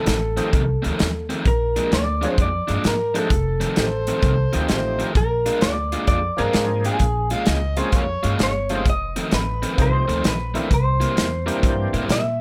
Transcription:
Already playing: F2 D#3 A3 C4 A4
0.06 A1, snare, closed hi-hat
0.37 F2 D#3 F3 A3 C4 D#4 G4, closed hi-hat
0.53 C2, kick, closed hi-hat
0.82 D2 F2 D#3 A3 C4, closed hi-hat
0.99 D#2, snare, closed hi-hat
1.29 F2 D#3 A3 C4, closed hi-hat
1.45 A#1 A#4, kick, closed hi-hat
1.76 A#2 F3 G#3 D4, closed hi-hat
1.92 D2 D5, snare, closed hi-hat
2.21 A#2 F3 G#3 A#3 C4 D4 G#4, closed hi-hat
2.38 F2, kick, closed hi-hat
2.42 D5
2.68 G2 A#2 F3 G#3 D4, closed hi-hat
2.84 G#2 A#4, snare, closed hi-hat
3.14 A#2 F3 G#3 A3 C4 D4 D#4 G4 A4, closed hi-hat
3.30 F1, kick, closed hi-hat
3.60 F2 D#3 A3 C4, closed hi-hat
3.76 A1 G4 A4 C5, snare, closed hi-hat
4.07 F2 D#3 A3 C4, closed hi-hat
4.22 C2, kick, closed hi-hat
4.53 D2 F2 D#3 F3 A3 C4 D#4 G4, closed hi-hat
4.68 A1 G4 A4 C5, snare, closed hi-hat
4.99 F2 D#3 A3 C4, closed hi-hat
5.15 A#1 A#4, kick, closed hi-hat
5.46 A#2 G#3 D4 F4, closed hi-hat
5.61 D2 D5, snare, closed hi-hat
5.92 A#2 G#3 D4 F4, closed hi-hat
6.07 F2 D5, kick, closed hi-hat
6.37 G2 A#2 F3 G#3 A#3 C4 D4 F4 G#4 A#4, closed hi-hat
6.53 G#2, snare, closed hi-hat
6.84 A#2 G#3 D4 F4 G#4, closed hi-hat
6.99 A#1, kick, closed hi-hat
7.30 A#2 G#3 C#4 F4 F5, closed hi-hat
7.46 C#2 D#5, snare, closed hi-hat
7.77 A#2 F3 G#3 A#3 C4 C#4 F4 G#4 C5, closed hi-hat
7.92 F2 G#4 A#4 C#5, kick, closed hi-hat
8.23 G2 A#2 G#3 C#4 F4, closed hi-hat
8.39 G1, snare, closed hi-hat
8.43 C#5
8.69 A#2 F3 G#3 A3 C4 C#4 D#4 F4 G4, closed hi-hat
8.74 C5
8.85 F1, kick, closed hi-hat
8.90 D#5
9.16 F2 D#3 A3 C4, closed hi-hat
9.31 A1 B4, snare, closed hi-hat
9.62 F2 D#3 A3 C4, closed hi-hat
9.78 C2 F3 A3 C4 D#4 G4, kick, closed hi-hat
9.82 C5
10.08 D2 F2 D#3 A3 C4, closed hi-hat
10.24 A#1 B4, snare, closed hi-hat
10.54 F2 D#3 E3 A3 A#3 C4 D4 E4, closed hi-hat
10.71 C2 C5, kick, closed hi-hat
11.00 C3 G3 A#3 E4, closed hi-hat
11.17 E2, snare, closed hi-hat
11.46 C3 E3 G3 A#3 C4 D4 E4 G4, closed hi-hat
11.63 G2, kick, closed hi-hat
11.94 A2 C3 G3 A#3 E4, closed hi-hat
12.08 A#2 E5, snare, closed hi-hat

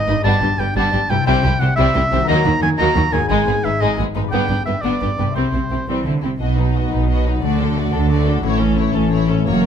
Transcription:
Already playing: G#2 B3 D#4 B4 D#5
0.07 G#1 G2 G#2 D#4 B4 D#5
0.12 D4
0.16 G4
0.21 G1 G2 G3 D4 B4 A5
0.26 B3
0.42 G1 G2 G3 D4 G4
0.58 G1 G2 G3 G4 B4 G5
0.75 G1 G2 G3 B3 D4 A5
0.92 G1 G2 G3 D4 G4
1.09 G1 G2 C3 G3 G4 B4 G5
1.14 E4
1.19 G4
1.23 C3 G3 E4 C5 G5
1.27 C2 C4
1.43 C2 C3 G3 E4 G4
1.60 C2 C3 G3 G4 C5 F#5
1.76 C2 C3 G3 C4 E4 E5
1.94 C2 C3 G3 E4 G4
2.11 C2 C3 D#3 G3 G4 C5
2.16 D#4
2.20 F#4
2.24 D#3 A#3 D#4 A#4 A#5
2.29 D#2 F#3
2.44 D#2 D#3 F#3 A#3 F#4
2.60 D#2 D#3 F#3 D#4 A#4 G#5
2.77 D#2 D#3 F#3 A#3 D#4 A#5
2.94 D#2 D#3 F#3 A#3 F#4
3.11 D#2 G#2 D#3 F#3 D#4 A#4 G#5
3.18 D#4
3.22 G#4
3.26 G#1 G#2 G#3 D#4 B4 G#5
3.47 G#1 G#2 G#3 B3 G#4
3.63 G#1 G#2 G#3 D#4 B4 E5
3.81 G#1 G#2 G#3 D#4 D#5
3.98 G#1 G#2 G#3 B3 G#4
4.15 G#1 G2 G#2 G#3 D#4 B4
4.19 G4
4.24 B4
4.28 G2 B3 D5 G5
4.33 G1 B3 D4
4.49 G1 G2 B3 D4 G4
4.65 G1 G2 B3 G4 B4 E5
4.81 G1 G2 B3 D4 D5
5.00 G1 G2 B3 D4 G4
5.18 G1 G2 C3 B3 G4 B4
5.22 G4
5.27 C5
5.31 G3 C5 E5
5.35 C2 C3 C4
5.53 C2 C3 C4 E4
5.70 C2 C3 C4 E4 G4
5.87 C2 E3 G3 C4
6.05 C2 D3 C4 E4
6.22 C2 C3 C4 E4 G4
6.39 B1 B2 F#3 B3 D#4 F#4 D#5
6.57 F#3 D#4 B4
6.74 B3 F#4 D#5
6.91 B1 B2 D#4 B4
7.08 B3 F#4 D#5
7.25 D#4 F#4 B4
7.41 D2 D3 A3 D4 F#4 D5
7.58 A3 D4 A4
7.76 A3 F#4 D5
7.92 D2 D3 D4 A4
8.09 A3 F#4 D5
8.27 D4 F#4 A4
8.43 A1 A2 E3 A3 C#4 E4 C#5
8.60 E3 C#4 A4
8.76 A3 E4 C#5
8.94 A1 A2 C#4 A4
9.11 A3 E4 C#5
9.29 C#4 E4 A4
9.45 F#1 F#2 F#3 A#3 F#4 C#5

